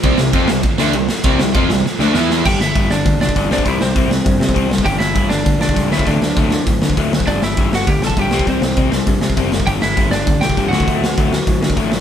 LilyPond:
<<
  \new Staff \with { instrumentName = "Lead electric guitar" } { \time 4/4 \key c \major \tempo 4 = 199 r1 | r1 | \key c \lydian <g' g''>8 <e' e''>4 <d' d''>4 <d' d''>4 <d' d''>8 | <e' e''>8 <c' c''>2. r8 |
<g' g''>8 <e' e''>4 <d' d''>4 <d' d''>4 <e' e''>8 | <d' d''>2 r2 | <d' d''>8 <e' e''>4 <fis' fis''>8 <g' g''>8 <a' a''>8 <g' g''>4 | <c' c''>4. r2 r8 |
<g' g''>8 <e' e''>4 <d' d''>4 <g' g''>4 <fis' fis''>8~ | <fis' fis''>2. r4 | }
  \new Staff \with { instrumentName = "Distorted electric guitar" } { \clef bass \time 4/4 \key c \major <c g c'>8 <c g>8 <f c' f'>8 <c g>8 r8 <d a d'>8 <c g>8 r8 | <c g c'>8 <c g>8 <f c' f'>8 <c g>8 r8 <d a d'>8 <e b e'>4 | \key c \lydian r1 | r1 |
r1 | r1 | r1 | r1 |
r1 | r1 | }
  \new Staff \with { instrumentName = "Overdriven electric guitar" } { \clef bass \time 4/4 \key c \major <c g c'>8 <c g>8 <f c' f'>8 <c g>8 r8 <d a d'>8 <c g>8 r8 | <c g c'>8 <c g>8 <f c' f'>8 <c g>8 r8 <d a d'>8 <e b e'>4 | \key c \lydian r1 | r1 |
r1 | r1 | r1 | r1 |
r1 | r1 | }
  \new Staff \with { instrumentName = "Overdriven electric guitar" } { \clef bass \time 4/4 \key c \major <c g c'>8 <c g>8 <f c' f'>8 <c g>8 r8 <d a d'>8 <c g>8 r8 | <c g c'>8 <c g>8 <f c' f'>8 <c g>8 r8 <d a d'>8 <e b e'>4 | \key c \lydian <g, d g>8 <g, d>8 <g, d g>8 <g, d>8 <g, d>8 <g, d>8 <g, d g>8 <c g c'>8 | <c g c'>8 <c g>8 <c g c'>8 <c g>8 <c g>8 <c g>8 <c g c'>8 <c g>8 |
<g, d g>8 <g, d>8 <g, d g>8 <g, d>8 <g, d>8 <g, d>8 <g, d g>8 <d fis a>8 | <d fis a>8 <d fis>8 <d fis a>8 <d fis>8 <d fis>8 <d fis>8 <d fis a>8 <d fis>8 | <g, d g>8 <g, d>8 <g, d g>8 <g, d>8 <g, d>8 <g, d>8 <g, d g>8 <c g c'>8 | <c g c'>8 <c g>8 <c g c'>8 <c g>8 <c g>8 <c g>8 <c g c'>8 <c g>8 |
<g, d g>8 <g, d>8 <g, d g>8 <g, d>8 <g, d>8 <g, d>8 <g, d g>8 <d fis a>8 | <d fis a>8 <d fis>8 <d fis a>8 <d fis>8 <d fis>8 <d fis>8 <d fis a>8 <d fis>8 | }
  \new Staff \with { instrumentName = "Picked electric bass" } { \clef bass \time 4/4 \key c \major c,8 c,8 f,8 c,8 r8 d,8 c,8 r8 | c,8 c,8 f,8 c,8 r8 d,8 e,4 | \key c \lydian g,,8 g,,8 g,,8 g,,8 d,8 b,,8 g,,8 c,8 | c,8 c,8 c,4 g,8 c8 c,4 |
g,,8 g,,8 g,,8 g,,8 d,8 b,,8 cis,8 d,8 | d,8 d,8 d,4 a,8 d8 d,4 | g,,8 g,,8 g,,8 g,,8 d,8 b,,8 g,,8 c,8 | c,8 c,8 c,4 g,8 c8 fis,,4 |
g,,8 g,,8 g,,8 g,,8 d,8 b,,8 g,,8 d,8 | d,8 d,8 d,4 a,8 d8 a,,4 | }
  \new DrumStaff \with { instrumentName = "Drums" } \drummode { \time 4/4 <bd cymr>8 sn8 <bd cymr>8 sn8 <bd cymr>8 sn8 cymr8 sn8 | <bd cymr>8 sn8 <bd cymr>8 sn8 sn8 sn8 sn8 sn8 | <cymc bd>8 sn8 <hho bd>8 sn8 <hho bd>8 sn16 bd16 <hho bd>8 sn16 bd16 | <hho bd>8 sn8 <hho bd>8 sn8 <hho bd>8 sn16 bd16 <hho bd>8 sn16 bd16 |
<hho bd>8 sn8 <hho bd>8 sn8 <hho bd>8 sn16 bd16 <hho bd>8 sn16 bd16 | <hho bd>8 sn8 <hho bd>8 sn8 <hho bd>8 sn16 bd16 <hho bd>8 sn16 bd16 | <hho bd>8 sn8 <hho bd>8 sn8 <hho bd>8 sn16 bd16 <hho bd>8 sn16 bd16 | <hho bd>8 sn8 <hho bd>8 sn8 <hho bd>8 sn16 bd16 <hho bd>8 sn16 bd16 |
<hho bd>8 sn8 <hho bd>8 sn8 <hho bd>8 sn16 bd16 <hho bd>8 sn16 bd16 | <hho bd>8 sn8 <hho bd>8 sn8 <hho bd>8 sn16 bd16 <hho bd>8 sn8 | }
>>